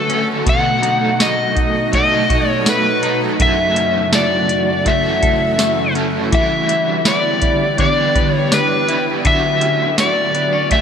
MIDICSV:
0, 0, Header, 1, 6, 480
1, 0, Start_track
1, 0, Tempo, 731707
1, 308, Time_signature, 4, 2, 24, 8
1, 7094, End_track
2, 0, Start_track
2, 0, Title_t, "Electric slide guitar"
2, 0, Program_c, 0, 29
2, 0, Note_on_c, 0, 69, 86
2, 173, Note_off_c, 0, 69, 0
2, 323, Note_on_c, 0, 78, 108
2, 799, Note_on_c, 0, 75, 80
2, 810, Note_off_c, 0, 78, 0
2, 1271, Note_off_c, 0, 75, 0
2, 1278, Note_on_c, 0, 75, 106
2, 1639, Note_off_c, 0, 75, 0
2, 1639, Note_on_c, 0, 73, 106
2, 1766, Note_on_c, 0, 71, 96
2, 1768, Note_off_c, 0, 73, 0
2, 2093, Note_off_c, 0, 71, 0
2, 2244, Note_on_c, 0, 76, 93
2, 2719, Note_off_c, 0, 76, 0
2, 2722, Note_on_c, 0, 74, 81
2, 3199, Note_on_c, 0, 76, 78
2, 3209, Note_off_c, 0, 74, 0
2, 3888, Note_off_c, 0, 76, 0
2, 4163, Note_on_c, 0, 76, 91
2, 4641, Note_on_c, 0, 74, 81
2, 4650, Note_off_c, 0, 76, 0
2, 5113, Note_off_c, 0, 74, 0
2, 5121, Note_on_c, 0, 74, 89
2, 5462, Note_off_c, 0, 74, 0
2, 5462, Note_on_c, 0, 73, 89
2, 5602, Note_on_c, 0, 71, 86
2, 5609, Note_off_c, 0, 73, 0
2, 5930, Note_off_c, 0, 71, 0
2, 6080, Note_on_c, 0, 76, 102
2, 6528, Note_off_c, 0, 76, 0
2, 6561, Note_on_c, 0, 74, 90
2, 7033, Note_off_c, 0, 74, 0
2, 7035, Note_on_c, 0, 76, 98
2, 7094, Note_off_c, 0, 76, 0
2, 7094, End_track
3, 0, Start_track
3, 0, Title_t, "Ambient pad"
3, 0, Program_c, 1, 92
3, 0, Note_on_c, 1, 50, 82
3, 0, Note_on_c, 1, 57, 78
3, 0, Note_on_c, 1, 66, 88
3, 289, Note_off_c, 1, 50, 0
3, 291, Note_off_c, 1, 66, 0
3, 307, Note_on_c, 1, 63, 83
3, 307, Note_on_c, 1, 66, 93
3, 310, Note_on_c, 1, 47, 81
3, 2208, Note_off_c, 1, 63, 0
3, 2208, Note_off_c, 1, 66, 0
3, 2210, Note_off_c, 1, 47, 0
3, 2232, Note_on_c, 1, 64, 77
3, 2232, Note_on_c, 1, 66, 96
3, 2233, Note_on_c, 1, 49, 89
3, 4122, Note_off_c, 1, 57, 0
3, 4131, Note_off_c, 1, 49, 0
3, 4131, Note_off_c, 1, 64, 0
3, 4131, Note_off_c, 1, 66, 0
3, 4150, Note_on_c, 1, 50, 81
3, 4151, Note_on_c, 1, 59, 83
3, 4151, Note_on_c, 1, 67, 100
3, 4154, Note_on_c, 1, 64, 75
3, 6050, Note_off_c, 1, 50, 0
3, 6050, Note_off_c, 1, 59, 0
3, 6051, Note_off_c, 1, 67, 0
3, 6052, Note_off_c, 1, 64, 0
3, 6070, Note_on_c, 1, 57, 74
3, 6071, Note_on_c, 1, 66, 88
3, 6072, Note_on_c, 1, 50, 83
3, 7094, Note_off_c, 1, 50, 0
3, 7094, Note_off_c, 1, 57, 0
3, 7094, Note_off_c, 1, 66, 0
3, 7094, End_track
4, 0, Start_track
4, 0, Title_t, "Clean electric guitar"
4, 0, Program_c, 2, 27
4, 0, Note_on_c, 2, 50, 79
4, 0, Note_on_c, 2, 57, 61
4, 0, Note_on_c, 2, 66, 76
4, 63, Note_on_c, 2, 61, 65
4, 298, Note_off_c, 2, 50, 0
4, 301, Note_on_c, 2, 47, 75
4, 354, Note_off_c, 2, 61, 0
4, 540, Note_on_c, 2, 63, 71
4, 559, Note_off_c, 2, 57, 0
4, 779, Note_off_c, 2, 66, 0
4, 781, Note_on_c, 2, 66, 65
4, 1010, Note_off_c, 2, 63, 0
4, 1018, Note_on_c, 2, 63, 62
4, 1263, Note_on_c, 2, 57, 65
4, 1503, Note_off_c, 2, 66, 0
4, 1506, Note_on_c, 2, 66, 72
4, 1742, Note_off_c, 2, 57, 0
4, 1745, Note_on_c, 2, 57, 57
4, 1978, Note_off_c, 2, 63, 0
4, 1986, Note_on_c, 2, 63, 65
4, 2225, Note_off_c, 2, 47, 0
4, 2229, Note_on_c, 2, 42, 82
4, 2275, Note_off_c, 2, 63, 0
4, 2467, Note_on_c, 2, 61, 62
4, 2704, Note_off_c, 2, 66, 0
4, 2706, Note_on_c, 2, 69, 67
4, 2948, Note_off_c, 2, 61, 0
4, 3186, Note_off_c, 2, 57, 0
4, 3189, Note_on_c, 2, 57, 66
4, 3420, Note_off_c, 2, 69, 0
4, 3428, Note_on_c, 2, 69, 70
4, 3660, Note_off_c, 2, 57, 0
4, 3667, Note_on_c, 2, 57, 58
4, 3907, Note_on_c, 2, 61, 65
4, 4145, Note_on_c, 2, 52, 83
4, 4149, Note_off_c, 2, 42, 0
4, 4195, Note_off_c, 2, 61, 0
4, 4196, Note_off_c, 2, 57, 0
4, 4196, Note_off_c, 2, 69, 0
4, 4388, Note_on_c, 2, 64, 66
4, 4629, Note_on_c, 2, 71, 63
4, 4862, Note_off_c, 2, 64, 0
4, 4870, Note_on_c, 2, 64, 54
4, 5107, Note_on_c, 2, 62, 67
4, 5341, Note_off_c, 2, 71, 0
4, 5349, Note_on_c, 2, 71, 67
4, 5585, Note_off_c, 2, 62, 0
4, 5588, Note_on_c, 2, 62, 57
4, 5820, Note_off_c, 2, 64, 0
4, 5828, Note_on_c, 2, 64, 64
4, 6063, Note_off_c, 2, 52, 0
4, 6066, Note_on_c, 2, 50, 85
4, 6116, Note_off_c, 2, 64, 0
4, 6116, Note_off_c, 2, 71, 0
4, 6302, Note_on_c, 2, 61, 68
4, 6322, Note_off_c, 2, 62, 0
4, 6545, Note_on_c, 2, 66, 72
4, 6785, Note_off_c, 2, 61, 0
4, 6788, Note_on_c, 2, 59, 59
4, 6906, Note_off_c, 2, 59, 0
4, 6906, Note_on_c, 2, 61, 53
4, 7028, Note_on_c, 2, 57, 64
4, 7094, Note_off_c, 2, 50, 0
4, 7094, Note_off_c, 2, 57, 0
4, 7094, Note_off_c, 2, 61, 0
4, 7094, Note_off_c, 2, 66, 0
4, 7094, End_track
5, 0, Start_track
5, 0, Title_t, "Overdriven electric guitar"
5, 0, Program_c, 3, 29
5, 0, Note_on_c, 3, 54, 57
5, 0, Note_on_c, 3, 57, 69
5, 0, Note_on_c, 3, 61, 62
5, 60, Note_on_c, 3, 69, 56
5, 68, Note_off_c, 3, 61, 0
5, 76, Note_on_c, 3, 61, 45
5, 87, Note_off_c, 3, 57, 0
5, 89, Note_on_c, 3, 57, 40
5, 294, Note_on_c, 3, 47, 79
5, 304, Note_off_c, 3, 69, 0
5, 306, Note_off_c, 3, 54, 0
5, 309, Note_on_c, 3, 54, 76
5, 312, Note_off_c, 3, 57, 0
5, 312, Note_off_c, 3, 61, 0
5, 320, Note_on_c, 3, 57, 83
5, 329, Note_on_c, 3, 63, 97
5, 339, Note_on_c, 3, 69, 81
5, 1256, Note_off_c, 3, 54, 0
5, 1259, Note_on_c, 3, 54, 63
5, 1261, Note_off_c, 3, 47, 0
5, 1269, Note_off_c, 3, 57, 0
5, 1271, Note_on_c, 3, 57, 66
5, 1273, Note_off_c, 3, 63, 0
5, 1281, Note_on_c, 3, 63, 67
5, 1287, Note_off_c, 3, 69, 0
5, 1289, Note_on_c, 3, 69, 66
5, 1977, Note_off_c, 3, 69, 0
5, 1979, Note_on_c, 3, 69, 52
5, 1989, Note_off_c, 3, 63, 0
5, 1997, Note_on_c, 3, 63, 49
5, 2007, Note_off_c, 3, 57, 0
5, 2010, Note_on_c, 3, 57, 46
5, 2213, Note_on_c, 3, 42, 75
5, 2224, Note_off_c, 3, 69, 0
5, 2225, Note_on_c, 3, 49, 77
5, 2231, Note_off_c, 3, 54, 0
5, 2232, Note_off_c, 3, 63, 0
5, 2233, Note_on_c, 3, 52, 77
5, 2236, Note_off_c, 3, 57, 0
5, 2244, Note_on_c, 3, 57, 80
5, 2260, Note_on_c, 3, 69, 84
5, 3179, Note_off_c, 3, 52, 0
5, 3181, Note_off_c, 3, 42, 0
5, 3181, Note_on_c, 3, 52, 56
5, 3185, Note_off_c, 3, 57, 0
5, 3187, Note_off_c, 3, 49, 0
5, 3193, Note_on_c, 3, 57, 58
5, 3203, Note_on_c, 3, 61, 62
5, 3204, Note_off_c, 3, 69, 0
5, 3212, Note_on_c, 3, 69, 69
5, 3892, Note_off_c, 3, 69, 0
5, 3900, Note_on_c, 3, 69, 57
5, 3904, Note_off_c, 3, 61, 0
5, 3911, Note_off_c, 3, 57, 0
5, 3912, Note_on_c, 3, 61, 53
5, 3921, Note_on_c, 3, 57, 49
5, 3927, Note_off_c, 3, 52, 0
5, 3930, Note_on_c, 3, 52, 43
5, 4130, Note_off_c, 3, 52, 0
5, 4138, Note_on_c, 3, 52, 79
5, 4144, Note_off_c, 3, 69, 0
5, 4150, Note_off_c, 3, 61, 0
5, 4151, Note_on_c, 3, 55, 78
5, 4155, Note_off_c, 3, 57, 0
5, 4163, Note_on_c, 3, 62, 74
5, 4172, Note_on_c, 3, 64, 76
5, 4182, Note_on_c, 3, 71, 76
5, 5092, Note_off_c, 3, 55, 0
5, 5100, Note_on_c, 3, 55, 59
5, 5103, Note_off_c, 3, 52, 0
5, 5108, Note_off_c, 3, 62, 0
5, 5111, Note_off_c, 3, 64, 0
5, 5111, Note_on_c, 3, 62, 59
5, 5119, Note_on_c, 3, 64, 64
5, 5120, Note_off_c, 3, 71, 0
5, 5128, Note_on_c, 3, 71, 78
5, 5809, Note_off_c, 3, 71, 0
5, 5817, Note_on_c, 3, 71, 54
5, 5824, Note_off_c, 3, 55, 0
5, 5826, Note_off_c, 3, 64, 0
5, 5834, Note_on_c, 3, 64, 46
5, 5845, Note_off_c, 3, 62, 0
5, 5848, Note_on_c, 3, 62, 41
5, 6052, Note_on_c, 3, 50, 78
5, 6062, Note_off_c, 3, 71, 0
5, 6066, Note_on_c, 3, 54, 76
5, 6071, Note_off_c, 3, 64, 0
5, 6074, Note_off_c, 3, 62, 0
5, 6077, Note_on_c, 3, 57, 78
5, 6098, Note_on_c, 3, 66, 91
5, 7014, Note_off_c, 3, 54, 0
5, 7016, Note_on_c, 3, 54, 55
5, 7020, Note_off_c, 3, 50, 0
5, 7025, Note_off_c, 3, 57, 0
5, 7028, Note_on_c, 3, 57, 70
5, 7038, Note_on_c, 3, 61, 72
5, 7045, Note_off_c, 3, 66, 0
5, 7047, Note_on_c, 3, 66, 70
5, 7094, Note_off_c, 3, 54, 0
5, 7094, Note_off_c, 3, 57, 0
5, 7094, Note_off_c, 3, 61, 0
5, 7094, Note_off_c, 3, 66, 0
5, 7094, End_track
6, 0, Start_track
6, 0, Title_t, "Drums"
6, 63, Note_on_c, 9, 42, 47
6, 129, Note_off_c, 9, 42, 0
6, 305, Note_on_c, 9, 36, 120
6, 306, Note_on_c, 9, 42, 78
6, 371, Note_off_c, 9, 36, 0
6, 371, Note_off_c, 9, 42, 0
6, 545, Note_on_c, 9, 42, 54
6, 611, Note_off_c, 9, 42, 0
6, 788, Note_on_c, 9, 38, 114
6, 789, Note_on_c, 9, 42, 64
6, 789, Note_on_c, 9, 54, 65
6, 854, Note_off_c, 9, 38, 0
6, 854, Note_off_c, 9, 42, 0
6, 855, Note_off_c, 9, 54, 0
6, 1027, Note_on_c, 9, 36, 98
6, 1027, Note_on_c, 9, 42, 55
6, 1093, Note_off_c, 9, 36, 0
6, 1093, Note_off_c, 9, 42, 0
6, 1267, Note_on_c, 9, 36, 83
6, 1267, Note_on_c, 9, 42, 66
6, 1332, Note_off_c, 9, 42, 0
6, 1333, Note_off_c, 9, 36, 0
6, 1509, Note_on_c, 9, 36, 96
6, 1510, Note_on_c, 9, 42, 55
6, 1574, Note_off_c, 9, 36, 0
6, 1575, Note_off_c, 9, 42, 0
6, 1746, Note_on_c, 9, 38, 112
6, 1747, Note_on_c, 9, 42, 79
6, 1747, Note_on_c, 9, 54, 63
6, 1812, Note_off_c, 9, 38, 0
6, 1812, Note_off_c, 9, 42, 0
6, 1812, Note_off_c, 9, 54, 0
6, 1987, Note_on_c, 9, 42, 56
6, 2052, Note_off_c, 9, 42, 0
6, 2228, Note_on_c, 9, 36, 105
6, 2229, Note_on_c, 9, 42, 84
6, 2294, Note_off_c, 9, 36, 0
6, 2295, Note_off_c, 9, 42, 0
6, 2468, Note_on_c, 9, 42, 54
6, 2534, Note_off_c, 9, 42, 0
6, 2707, Note_on_c, 9, 38, 116
6, 2707, Note_on_c, 9, 42, 62
6, 2708, Note_on_c, 9, 54, 65
6, 2772, Note_off_c, 9, 38, 0
6, 2773, Note_off_c, 9, 42, 0
6, 2774, Note_off_c, 9, 54, 0
6, 2948, Note_on_c, 9, 42, 52
6, 3013, Note_off_c, 9, 42, 0
6, 3187, Note_on_c, 9, 42, 62
6, 3188, Note_on_c, 9, 36, 77
6, 3253, Note_off_c, 9, 42, 0
6, 3254, Note_off_c, 9, 36, 0
6, 3428, Note_on_c, 9, 42, 51
6, 3429, Note_on_c, 9, 36, 93
6, 3494, Note_off_c, 9, 36, 0
6, 3494, Note_off_c, 9, 42, 0
6, 3666, Note_on_c, 9, 38, 111
6, 3666, Note_on_c, 9, 42, 71
6, 3666, Note_on_c, 9, 54, 74
6, 3732, Note_off_c, 9, 38, 0
6, 3732, Note_off_c, 9, 42, 0
6, 3732, Note_off_c, 9, 54, 0
6, 3906, Note_on_c, 9, 42, 51
6, 3971, Note_off_c, 9, 42, 0
6, 4149, Note_on_c, 9, 36, 112
6, 4149, Note_on_c, 9, 42, 81
6, 4214, Note_off_c, 9, 36, 0
6, 4215, Note_off_c, 9, 42, 0
6, 4390, Note_on_c, 9, 42, 60
6, 4455, Note_off_c, 9, 42, 0
6, 4627, Note_on_c, 9, 38, 104
6, 4627, Note_on_c, 9, 42, 67
6, 4628, Note_on_c, 9, 54, 60
6, 4692, Note_off_c, 9, 38, 0
6, 4693, Note_off_c, 9, 42, 0
6, 4694, Note_off_c, 9, 54, 0
6, 4865, Note_on_c, 9, 42, 53
6, 4868, Note_on_c, 9, 36, 90
6, 4931, Note_off_c, 9, 42, 0
6, 4934, Note_off_c, 9, 36, 0
6, 5106, Note_on_c, 9, 42, 62
6, 5108, Note_on_c, 9, 36, 84
6, 5171, Note_off_c, 9, 42, 0
6, 5174, Note_off_c, 9, 36, 0
6, 5350, Note_on_c, 9, 36, 102
6, 5350, Note_on_c, 9, 42, 50
6, 5415, Note_off_c, 9, 36, 0
6, 5416, Note_off_c, 9, 42, 0
6, 5588, Note_on_c, 9, 38, 104
6, 5588, Note_on_c, 9, 42, 77
6, 5588, Note_on_c, 9, 54, 67
6, 5654, Note_off_c, 9, 38, 0
6, 5654, Note_off_c, 9, 42, 0
6, 5654, Note_off_c, 9, 54, 0
6, 5829, Note_on_c, 9, 42, 57
6, 5894, Note_off_c, 9, 42, 0
6, 6067, Note_on_c, 9, 42, 82
6, 6068, Note_on_c, 9, 36, 110
6, 6133, Note_off_c, 9, 36, 0
6, 6133, Note_off_c, 9, 42, 0
6, 6307, Note_on_c, 9, 42, 59
6, 6372, Note_off_c, 9, 42, 0
6, 6547, Note_on_c, 9, 38, 105
6, 6547, Note_on_c, 9, 42, 68
6, 6548, Note_on_c, 9, 54, 64
6, 6612, Note_off_c, 9, 38, 0
6, 6613, Note_off_c, 9, 42, 0
6, 6614, Note_off_c, 9, 54, 0
6, 6787, Note_on_c, 9, 42, 53
6, 6853, Note_off_c, 9, 42, 0
6, 7025, Note_on_c, 9, 42, 61
6, 7027, Note_on_c, 9, 36, 86
6, 7090, Note_off_c, 9, 42, 0
6, 7093, Note_off_c, 9, 36, 0
6, 7094, End_track
0, 0, End_of_file